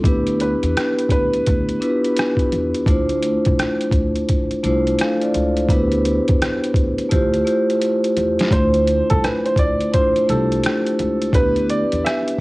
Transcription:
0.04 0.53 D2 loud
0.04 1.24 B3 medium
0.04 1.24 D4 medium
0.04 1.25 E4 medium
0.04 1.25 G4 medium
0.04 1.26 B4 medium
0.04 kick loud
0.04 closed hi-hat medium
0.27 closed hi-hat soft
0.40 1.07 B4 medium
0.40 closed hi-hat medium
0.63 0.74 E2 medium
0.63 closed hi-hat soft
0.77 cross-stick loud
0.77 closed hi-hat medium
0.99 closed hi-hat medium
1.09 1.40 D2 medium
1.09 2.83 B4 medium
1.09 kick medium
1.09 closed hi-hat medium
1.33 closed hi-hat soft
1.46 1.77 D2 medium
1.46 kick medium
1.46 closed hi-hat medium
1.69 closed hi-hat soft
1.80 2.73 B3 medium
1.80 2.73 D4 medium
1.80 2.74 E4 medium
1.80 1.90 F4 medium
1.80 2.75 B4 medium
1.80 closed hi-hat medium
1.90 2.77 G4 medium
2.04 closed hi-hat soft
2.17 cross-stick loud
2.17 closed hi-hat medium
2.37 kick medium
2.37 closed hi-hat soft
2.52 2.71 E2 medium
2.52 closed hi-hat medium
2.74 closed hi-hat soft
2.86 3.35 D2 loud
2.86 4.06 A3 medium
2.86 4.07 D4 medium
2.86 4.07 E4 medium
2.86 4.08 F4 medium
2.86 4.08 C5 medium
2.86 kick loud
2.86 closed hi-hat medium
3.09 closed hi-hat soft
3.23 closed hi-hat medium
3.45 3.57 C2 medium
3.45 kick loud
3.45 closed hi-hat medium
3.59 cross-stick loud
3.59 closed hi-hat medium
3.81 closed hi-hat soft
3.91 4.22 D2 medium
3.91 kick medium
3.91 closed hi-hat medium
4.16 closed hi-hat soft
4.29 kick medium
4.29 closed hi-hat medium
4.51 muted upright bass stroke soft
4.51 closed hi-hat soft
4.63 4.93 C2 medium
4.63 5.55 A3 medium
4.63 5.56 D4 medium
4.63 4.99 E4 medium
4.63 5.00 F4 medium
4.63 5.00 C5 loud
4.63 closed hi-hat medium
4.87 closed hi-hat soft
4.99 5.21 A4 medium
4.99 5.21 F5 medium
4.99 cross-stick loud
4.99 closed hi-hat medium
5.22 5.55 F4 medium
5.22 5.55 D5 medium
5.22 closed hi-hat soft
5.34 5.64 C#2 medium
5.34 closed hi-hat medium
5.57 5.90 C5 medium
5.57 closed hi-hat soft
5.69 6.18 D2 loud
5.69 6.89 B3 medium
5.69 6.89 D4 medium
5.69 6.90 E4 medium
5.69 5.78 F#4 medium
5.69 6.91 B4 medium
5.69 kick loud
5.69 closed hi-hat medium
5.78 6.94 G4 medium
5.92 closed hi-hat soft
6.05 closed hi-hat medium
6.28 6.39 E2 medium
6.28 kick loud
6.28 closed hi-hat medium
6.42 cross-stick loud
6.42 closed hi-hat medium
6.64 closed hi-hat soft
6.74 7.05 D2 medium
6.74 kick medium
6.74 closed hi-hat medium
6.98 closed hi-hat soft
7.09 7.41 D2 loud
7.09 7.41 A3 medium
7.09 7.41 E4 medium
7.09 7.42 F4 medium
7.09 7.42 G4 medium
7.09 7.42 C5 loud
7.09 kick medium
7.09 closed hi-hat medium
7.34 closed hi-hat soft
7.45 8.37 A3 medium
7.45 8.38 E4 medium
7.45 8.38 F4 medium
7.45 8.39 G4 medium
7.45 8.39 C5 loud
7.45 closed hi-hat medium
7.70 closed hi-hat soft
7.82 closed hi-hat medium
8.04 closed hi-hat soft
8.17 8.35 E2 medium
8.17 closed hi-hat medium
8.39 snare medium
8.39 closed hi-hat medium
8.51 9.00 D2 loud
8.51 9.71 A3 medium
8.51 9.71 D4 medium
8.51 9.72 E4 medium
8.51 9.72 F4 medium
8.51 9.06 C5 medium
8.51 9.73 C5 medium
8.51 kick loud
8.51 closed hi-hat medium
8.74 closed hi-hat soft
8.87 closed hi-hat medium
9.10 9.22 C2 medium
9.10 9.23 A4 medium
9.10 kick loud
9.10 closed hi-hat soft
9.24 9.43 B4 medium
9.24 cross-stick loud
9.24 closed hi-hat medium
9.46 9.57 C5 medium
9.46 closed hi-hat soft
9.56 9.87 D2 medium
9.56 9.90 D5 medium
9.56 kick medium
9.56 closed hi-hat medium
9.81 closed hi-hat soft
9.91 10.23 A3 medium
9.91 10.23 D4 medium
9.91 10.24 E4 medium
9.91 10.24 F4 medium
9.91 10.25 C5 medium
9.91 kick medium
9.91 closed hi-hat medium
10.16 muted upright bass stroke soft
10.16 closed hi-hat soft
10.27 10.59 C2 medium
10.27 11.20 A3 medium
10.27 11.20 D4 medium
10.27 11.21 E4 medium
10.27 11.21 F4 medium
10.27 11.22 G4 medium
10.27 11.31 A4 medium
10.27 closed hi-hat medium
10.52 closed hi-hat soft
10.64 cross-stick loud
10.64 closed hi-hat medium
10.87 closed hi-hat soft
10.99 11.29 C#2 medium
10.99 closed hi-hat medium
11.22 closed hi-hat medium
11.33 11.82 D2 loud
11.33 12.40 B3 medium
11.33 12.40 D4 medium
11.33 12.40 E4 medium
11.33 12.40 G4 medium
11.33 11.66 B4 loud
11.33 12.40 B4 medium
11.33 kick loud
11.33 closed hi-hat medium
11.56 closed hi-hat soft
11.70 12.01 D5 medium
11.70 closed hi-hat medium
11.92 12.03 E2 medium
11.92 closed hi-hat medium
12.05 12.36 E5 medium
12.05 cross-stick loud
12.05 closed hi-hat medium
12.28 closed hi-hat medium

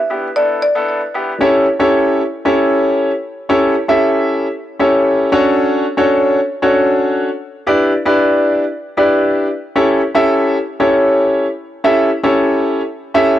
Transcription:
0.00 0.33 E5 loud
0.10 0.26 B3 medium
0.10 0.27 D4 medium
0.10 0.27 E4 medium
0.10 0.27 G4 medium
0.36 0.60 B3 medium
0.36 0.61 D4 medium
0.36 0.61 E4 medium
0.36 0.61 A4 medium
0.36 0.61 D5 loud
0.62 1.11 D5 medium
0.75 1.00 B3 medium
0.75 1.00 D4 medium
0.75 1.00 E4 medium
0.75 1.00 A4 medium
1.14 1.31 B3 medium
1.14 1.31 D4 medium
1.14 1.31 E4 medium
1.14 1.31 G4 medium
1.41 1.65 C#4 medium
1.41 1.65 E4 medium
1.41 1.65 G4 medium
1.41 1.65 A4 medium
1.41 1.65 C#5 loud
1.79 2.20 C#4 medium
1.79 2.20 E4 medium
1.79 2.20 G4 medium
1.79 2.21 A4 medium
1.79 2.21 C#5 loud
2.45 3.10 C#4 medium
2.45 3.10 E4 medium
2.45 3.10 G4 medium
2.45 3.10 A4 medium
2.45 3.10 C#5 loud
3.49 3.74 C#4 medium
3.49 3.74 E4 medium
3.49 3.74 G4 medium
3.49 3.74 A4 medium
3.49 3.74 C#5 loud
3.88 4.45 C#4 medium
3.88 4.46 E4 medium
3.88 4.46 G4 medium
3.88 4.46 A4 medium
3.88 4.46 E5 loud
4.79 5.28 C#4 medium
4.79 5.29 E4 medium
4.79 5.29 G4 medium
4.79 5.29 A4 medium
4.79 5.29 C#5 loud
5.32 5.84 C#4 loud
5.32 5.84 D4 medium
5.32 5.84 F#4 medium
5.32 5.84 A4 medium
5.32 5.84 C#5 loud
5.97 6.38 C#4 medium
5.97 6.38 D4 medium
5.97 6.38 F#4 medium
5.97 6.38 A4 medium
5.97 6.38 C#5 loud
6.62 7.27 C#4 medium
6.62 7.28 D4 medium
6.62 7.27 F#4 medium
6.62 7.28 A4 medium
6.62 7.28 C#5 loud
7.67 7.91 D4 medium
7.67 7.91 E4 medium
7.67 7.91 G4 medium
7.67 7.91 B4 medium
7.67 7.91 D5 loud
8.05 8.63 D4 medium
8.05 8.63 E4 medium
8.05 8.63 G4 medium
8.05 8.63 B4 medium
8.05 8.63 D5 loud
8.97 9.46 D4 medium
8.97 9.46 E4 medium
8.97 9.46 G4 medium
8.97 9.46 B4 medium
8.97 9.46 D5 loud
9.76 10.00 C#4 medium
9.76 10.00 E4 medium
9.76 10.00 G4 medium
9.76 10.00 A4 medium
9.76 10.00 C#5 loud
10.15 10.55 C#4 medium
10.15 10.55 E4 medium
10.15 10.55 G4 medium
10.15 10.56 A4 medium
10.15 10.56 E5 loud
10.80 11.45 C#4 medium
10.80 11.45 E4 medium
10.80 11.45 G4 medium
10.80 11.45 A4 medium
10.80 11.45 C#5 loud
11.84 12.09 C#4 medium
11.84 12.09 E4 medium
11.84 12.09 G4 medium
11.84 12.09 A4 medium
11.84 12.09 E5 loud
12.23 12.80 C#4 medium
12.23 12.80 E4 medium
12.23 12.80 G4 medium
12.23 12.80 A4 medium
12.23 12.81 C#5 loud
13.14 13.39 C#4 loud
13.14 13.39 E4 medium
13.14 13.39 G4 medium
13.14 13.39 A4 medium
13.14 13.39 E5 loud

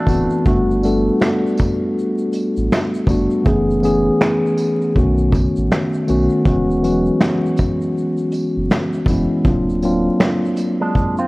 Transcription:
0.00 0.44 A3 medium
0.00 0.43 D4 medium
0.07 0.27 D1 medium
0.07 0.38 E3 medium
0.07 0.38 A3 medium
0.07 0.39 B3 medium
0.07 0.39 C4 medium
0.07 0.39 F#4 medium
0.07 kick medium
0.07 closed hi-hat medium
0.07 tambourine medium
0.07 shaker soft
0.30 shaker soft
0.45 1.10 G1 loud
0.45 0.76 G3 medium
0.45 0.76 A3 medium
0.45 0.77 B3 medium
0.45 0.77 D4 medium
0.45 0.77 F#4 loud
0.45 kick loud
0.45 shaker medium
0.71 shaker soft
0.83 1.98 G3 medium
0.83 1.98 A3 medium
0.83 1.99 B3 medium
0.83 1.99 D4 medium
0.83 1.99 A4 medium
0.83 closed hi-hat medium
0.83 tambourine medium
0.83 shaker soft
1.21 finger snap loud
1.21 snare loud
1.21 shaker medium
1.47 shaker soft
1.57 kick medium
1.57 closed hi-hat medium
1.57 tambourine medium
1.57 shaker soft
1.99 shaker soft
2.18 shaker soft
2.33 closed hi-hat medium
2.33 tambourine soft
2.33 shaker soft
2.57 2.69 A1 medium
2.57 shaker soft
2.72 finger snap medium
2.72 snare loud
2.72 shaker medium
2.94 shaker medium
3.07 3.27 G1 medium
3.07 3.39 G3 medium
3.07 3.39 A3 medium
3.07 3.39 B3 medium
3.07 3.40 D4 medium
3.07 3.40 F#4 medium
3.07 kick loud
3.07 closed hi-hat medium
3.07 tambourine medium
3.07 shaker soft
3.30 shaker soft
3.44 4.10 F#1 loud
3.44 3.75 E3 medium
3.44 3.76 A3 medium
3.44 3.76 B3 medium
3.44 3.76 C#4 medium
3.44 3.77 G#4 medium
3.44 kick loud
3.44 shaker medium
3.71 shaker soft
3.82 4.95 E3 medium
3.82 4.94 A3 medium
3.82 4.94 B3 medium
3.82 4.95 C#4 medium
3.82 4.97 G#4 medium
3.82 closed hi-hat medium
3.82 tambourine medium
3.82 shaker soft
4.21 finger snap loud
4.21 snare loud
4.21 shaker medium
4.46 shaker soft
4.57 closed hi-hat medium
4.57 tambourine medium
4.57 shaker soft
4.82 shaker soft
4.95 5.47 B1 loud
4.95 5.03 C#3 medium
4.95 5.89 A3 medium
4.95 5.89 B3 medium
4.95 5.89 C#4 medium
4.95 5.90 F#4 medium
4.95 kick medium
4.95 shaker soft
5.01 5.92 D#3 medium
5.18 shaker soft
5.32 kick medium
5.32 closed hi-hat medium
5.32 tambourine soft
5.32 shaker soft
5.56 5.69 A1 medium
5.56 shaker soft
5.71 finger snap medium
5.71 snare loud
5.71 shaker medium
5.94 shaker medium
6.08 6.29 B1 medium
6.08 6.39 D#3 medium
6.08 6.39 A3 medium
6.08 6.39 B3 medium
6.08 6.40 C#4 medium
6.08 6.40 F#4 medium
6.08 closed hi-hat medium
6.08 tambourine medium
6.08 shaker soft
6.30 shaker soft
6.45 7.10 E1 loud
6.45 6.76 E3 medium
6.45 6.76 G#3 medium
6.45 6.77 B3 medium
6.45 6.77 C#4 medium
6.45 6.77 F#4 medium
6.45 kick loud
6.45 shaker medium
6.71 shaker soft
6.82 7.98 E3 medium
6.82 6.91 F#3 medium
6.82 7.98 B3 medium
6.82 7.98 C#4 medium
6.82 7.99 F#4 medium
6.82 closed hi-hat medium
6.82 tambourine soft
6.82 shaker soft
6.89 8.01 G#3 medium
7.06 shaker soft
7.21 finger snap loud
7.21 snare loud
7.21 shaker medium
7.46 shaker soft
7.57 kick medium
7.57 closed hi-hat medium
7.57 tambourine medium
7.57 shaker soft
7.81 shaker soft
7.98 shaker soft
8.17 shaker soft
8.32 closed hi-hat medium
8.32 tambourine soft
8.32 shaker soft
8.57 8.69 F#1 medium
8.71 finger snap medium
8.71 snare loud
8.71 shaker medium
8.93 shaker medium
9.06 9.27 E1 medium
9.06 9.38 E3 medium
9.06 9.38 G#3 medium
9.06 9.39 B3 medium
9.06 9.39 C#4 medium
9.06 9.39 E4 medium
9.06 kick medium
9.06 closed hi-hat medium
9.06 tambourine medium
9.06 shaker soft
9.45 10.09 D1 loud
9.45 9.76 F#3 medium
9.45 9.77 A#3 medium
9.45 9.77 C4 medium
9.45 9.77 D4 medium
9.45 9.78 F4 medium
9.45 kick loud
9.45 shaker medium
9.70 shaker soft
9.83 10.98 F#3 medium
9.83 10.98 A#3 medium
9.83 10.99 C4 medium
9.83 10.99 D4 medium
9.83 10.99 F4 medium
9.83 closed hi-hat medium
9.83 tambourine soft
9.83 shaker soft
10.20 finger snap loud
10.20 snare loud
10.20 shaker medium
10.45 shaker soft
10.56 closed hi-hat medium
10.56 tambourine medium
10.56 shaker soft
10.81 11.17 G#3 medium
10.81 11.17 D4 medium
10.95 kick medium
10.95 shaker soft
11.17 11.28 C4 medium
11.17 11.28 F4 medium
11.17 shaker soft

